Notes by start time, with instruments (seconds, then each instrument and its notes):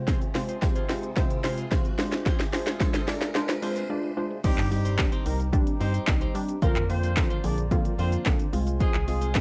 Already playing: analog polysynth C3 G#3 C4 F4 C5, riser
0.07 harmonium C3 C4 F4 G#4, clean electric guitar C4 F4 G#4 C5, kick, snare, closed hi-hat, tambourine, shaker
0.21 muted clean electric guitar stroke, closed hi-hat, shaker
0.35 analog polysynth C3 G#3 C4 F4 C5, muted clean electric guitar stroke, snare, open hi-hat, tambourine, shaker
0.48 clean electric guitar C4 F4 G#4 C5, closed hi-hat, shaker
0.62 analog polysynth C3 G#3 C4 F4 C5, muted clean electric guitar stroke, kick, snare, closed hi-hat, tambourine, shaker
0.75 clean electric guitar C4 F4 G#4 C5, closed hi-hat, shaker
0.89 analog polysynth C3 G#3 C4 F4 C5, muted clean electric guitar stroke, snare, open hi-hat, tambourine, shaker
1.03 muted clean electric guitar stroke, closed hi-hat, shaker
1.16 analog polysynth C3 G#3 C4 F4 C5, muted clean electric guitar stroke, kick, snare, closed hi-hat, tambourine, shaker
1.30 muted clean electric guitar stroke, closed hi-hat, shaker
1.43 analog polysynth C3 G#3 C4 F4 C5, clean electric guitar C4 F4 G#4 C5, snare, open hi-hat, shaker
1.57 clean electric guitar C4 F4 G#4 C5, closed hi-hat, shaker
1.71 analog polysynth C3 G#3 C4 F4 C5, muted clean electric guitar stroke, kick, snare, closed hi-hat, tambourine, shaker
1.85 muted clean electric guitar stroke, closed hi-hat, shaker
1.98 harmonium D2, analog polysynth G#3 D4 F4 C5, snare, open hi-hat, tambourine, shaker
2.12 muted clean electric guitar stroke, snare, closed hi-hat, shaker
2.26 clean electric guitar C4 F4 G#4 C5, kick, snare, closed hi-hat, tambourine, shaker
2.39 muted clean electric guitar stroke, snare, closed hi-hat, shaker
2.53 analog polysynth G#3 D4 F4 C5, muted clean electric guitar stroke, snare, open hi-hat, tambourine, shaker
2.67 clean electric guitar C4 F4 G#4 C5, snare, closed hi-hat, shaker
2.80 analog polysynth G#3 D4 F4 C5, muted clean electric guitar stroke, kick, snare, closed hi-hat, tambourine, shaker
2.94 clean electric guitar C4 F4 G#4 C5, snare, closed hi-hat, shaker
3.08 analog polysynth G#3 D4 F4 D5, muted clean electric guitar stroke, snare, open hi-hat, tambourine, shaker
3.21 muted clean electric guitar stroke, snare, closed hi-hat, shaker
3.35 analog polysynth G#3 D4 F4 C5, snare, closed hi-hat, tambourine, shaker
3.49 snare, closed hi-hat, shaker
3.62 analog polysynth G#3 D4 F4 C5, clean electric guitar C4 F4 G#4 C5, open hi-hat, shaker
3.76 clean electric guitar C4 F4 G#4 C5, closed hi-hat, shaker
3.89 analog polysynth G#3 D4 F4 D5, muted clean electric guitar stroke
4.03 muted clean electric guitar stroke
4.17 analog polysynth G#3 D4 F4 C5
4.31 muted clean electric guitar stroke
4.44 fm bass C2, analog polysynth G3 C4 D#4, horn section G3 G4, clean electric guitar C4 D#4 G4 C5, harmonium D#4 G4 C5 G5, kick, closed hi-hat, crash, tambourine, impact, shaker
4.58 fm bass G2, clap, closed hi-hat, shaker
4.71 analog polysynth G3 C4 D#4, horn section G3 G4, muted clean electric guitar stroke, open hi-hat, tambourine, shaker
4.85 clean electric guitar C4 D#4 G4 C5, closed hi-hat, shaker
4.98 analog polysynth G3 C4 D4, kick, snare, clap, closed hi-hat, tambourine, shaker
5.12 clean electric guitar C4 D#4 G4 C5, closed hi-hat, shaker
5.26 fm bass C2, analog polysynth G3 C4 D#4, horn section A#3 A#4, muted clean electric guitar stroke, open hi-hat, tambourine, shaker
5.39 muted clean electric guitar stroke, closed hi-hat, shaker
5.53 analog polysynth G3 C4 D4, muted clean electric guitar stroke, kick, closed hi-hat, shaker
5.67 muted clean electric guitar stroke, closed hi-hat, shaker
5.80 fm bass G2, analog polysynth G3 C4 D#4, clean electric guitar C4 D#4 G4 C5, horn section C4 C5, open hi-hat, tambourine, shaker
5.94 clean electric guitar C4 D#4 G4 C5, closed hi-hat, shaker
6.07 fm bass C2, analog polysynth G3 C4 D#4, kick, snare, clap, closed hi-hat, tambourine, shaker
6.21 clean electric guitar C4 D#4 G4 C5, closed hi-hat, shaker
6.35 analog polysynth G3 C4 D4, muted clean electric guitar stroke, open hi-hat, tambourine, shaker
6.49 muted clean electric guitar stroke, closed hi-hat, shaker
6.62 fm bass A#1, analog polysynth D3 F3 A#3 C4 F4, clean electric guitar A#3 D4 F4 C5, horn section A#3 A#4, harmonium F4 C5 D5 A#5, kick, closed hi-hat, tambourine, shaker
6.76 fm bass F2, clap, closed hi-hat, shaker
6.89 analog polysynth D3 F3 A#3 C4 F4, horn section C4 C5, muted clean electric guitar stroke, open hi-hat, tambourine, shaker
7.03 clean electric guitar A#3 D4 F4 C5, closed hi-hat, shaker
7.17 analog polysynth D3 F3 A#3 C4 F4, muted clean electric guitar stroke, kick, snare, clap, closed hi-hat, tambourine, shaker
7.30 clean electric guitar A#3 D4 F4 C5, closed hi-hat, shaker
7.44 fm bass A#1, analog polysynth D3 F3 A#3 C4 G#4, horn section D4 D5, muted clean electric guitar stroke, open hi-hat, tambourine, shaker
7.58 muted clean electric guitar stroke, closed hi-hat, shaker
7.71 analog polysynth D3 F3 A#3 C4 F4, muted clean electric guitar stroke, kick, closed hi-hat, tambourine, shaker
7.85 muted clean electric guitar stroke, closed hi-hat, shaker
7.98 fm bass F2, analog polysynth D3 F3 A#3 C4 F4, clean electric guitar A#3 D4 F4 C5, horn section C4 C5, open hi-hat, tambourine, shaker
8.12 clean electric guitar A#3 D4 F4 C5, closed hi-hat, shaker
8.26 fm bass B1, analog polysynth D3 F3 A#3 C4 D4, muted clean electric guitar stroke, kick, snare, clap, closed hi-hat, tambourine, shaker
8.39 muted clean electric guitar stroke, closed hi-hat, shaker
8.53 fm bass C2, analog polysynth G#3 C4 F4, harmonium G#5 C6, open hi-hat, tambourine, shaker
8.67 muted clean electric guitar stroke, closed hi-hat, shaker
8.80 horn section G#3 G#4, clean electric guitar C4 F4 G#4 C5, kick, closed hi-hat, tambourine, shaker
8.94 fm bass C2, muted clean electric guitar stroke, clap, closed hi-hat, shaker
9.08 analog polysynth G#3 C4 F4, horn section G#3 G#4, muted clean electric guitar stroke, open hi-hat, tambourine, shaker
9.21 clean electric guitar C4 F4 G#4 C5, closed hi-hat, shaker
9.35 analog polysynth G#3 C4 F4, muted clean electric guitar stroke, kick, snare, clap, closed hi-hat, tambourine, shaker